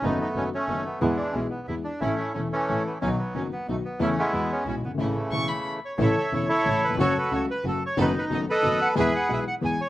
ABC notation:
X:1
M:3/4
L:1/16
Q:1/4=182
K:A
V:1 name="Violin"
z12 | z12 | z12 | z12 |
z12 | z4 c'2 b2 z4 | z12 | z12 |
z12 | z12 |]
V:2 name="Bandoneon"
^D2 D2 C2 C4 B,2 | B,2 D2 C2 B,2 E2 D2 | E2 E2 C2 C4 B,2 | C2 B,2 C2 B,2 A,2 B,2 |
E2 E4 C2 C2 B,2 | A,8- A,2 c2 | e2 e2 c2 c4 B2 | c2 B2 c2 B2 A2 c2 |
B2 B2 ^d2 d4 f2 | e2 f2 e2 f2 g2 c2 |]
V:3 name="Bandoneon"
[A,B,]6 A,6 | [E,G,]6 z6 | [A,C]6 [E,A,]6 | F,6 z6 |
[A,C]2 [G,B,]6 z4 | [C,E,]8- [C,E,]2 z2 | [Ac]6 [EA]6 | [FA]6 z6 |
^D6 [AB]6 | [GB]6 z6 |]
V:4 name="String section"
[A,B,^D]2 z2 [A,B,D]2 z2 [A,B,D]2 z2 | [G,B,E]2 z2 [G,B,E]2 z2 [G,B,E]2 z2 | [A,CE]2 z2 [A,CE]2 z2 [A,CE]2 z2 | [F,B,^D]2 z2 [F,B,D]2 z2 [F,B,D]2 z2 |
[A,CE]2 z2 [G,EF]2 z2 [G,EF]2 z2 | [A,CE]2 z2 [A,CE]2 z6 | [A,CE]2 z2 [A,CE]2 z2 [A,CE]2 z2 | [A,CF]2 z2 [A,CF]2 z2 [A,CF]2 z2 |
[B,^DA]2 z2 [B,DA]2 z2 [B,DA]2 z2 | [B,EG]2 z2 [B,EG]2 z2 [B,EG]2 z2 |]
V:5 name="Grand piano" clef=bass
[F,,^D,F,A,B,F]2 z2 [F,,D,F,A,B,F]2 z2 [F,,D,F,A,B,F]2 z2 | [E,,E,G,B,G]2 z2 [B,,,B,,E,G,B,G]2 z2 [E,,E,G,B,G]2 z2 | [A,,,A,,E,A,CA]2 z2 [E,,,E,,E,A,CA]2 z2 [A,,,A,,E,A,CA]2 z2 | [B,,,B,,^D,F,B,F]2 z2 [F,,,F,,D,F,B,F]2 z2 [B,,,B,,D,F,B,F]2 z2 |
[E,,C,E,A,E]2 z2 [E,,E,G,B,F]2 z2 [B,,,B,,E,G,B,F]2 z/2 F,,,/2 =G,,,/2 ^G,,,/2 | [A,,,A,,C,E,A,E]2 z2 [E,,,E,,C,E,A,E]2 z6 | [A,,,A,,C,E,A,E]2 z2 [E,,,E,,C,E,A,E]2 z2 [A,,,A,,C,E,A,E]2 z/2 ^D,,/2 E,,/2 =F,,/2 | [F,,C,F,A,F]2 z2 [C,,C,F,A,F]2 z2 [F,,C,F,A,F]2 z2 |
[F,,^D,F,A,B,F]2 z2 [F,,D,F,A,B,F]2 z2 [F,,D,F,A,B,F]2 z2 | [E,,E,G,B,G]2 z2 [B,,,B,,E,G,B,G]2 z2 [E,,E,G,B,G]2 z2 |]
V:6 name="Double bass" clef=bass
F,,,2 z2 F,,,2 z2 F,,,2 z2 | E,,2 z2 B,,,2 z2 E,,2 z2 | A,,,2 z2 E,,,2 z2 A,,,2 z2 | B,,,2 z2 F,,,2 z2 B,,,2 z2 |
E,,2 z2 E,,2 z2 B,,,2 =G,,,2 | A,,,2 z2 E,,,2 z6 | A,,,2 z2 E,,,2 z2 A,,,2 z2 | F,,,2 z2 C,,2 z2 F,,,2 z2 |
F,,,2 z2 F,,,2 z2 F,,,2 z2 | E,,2 z2 B,,,2 z2 E,,2 z2 |]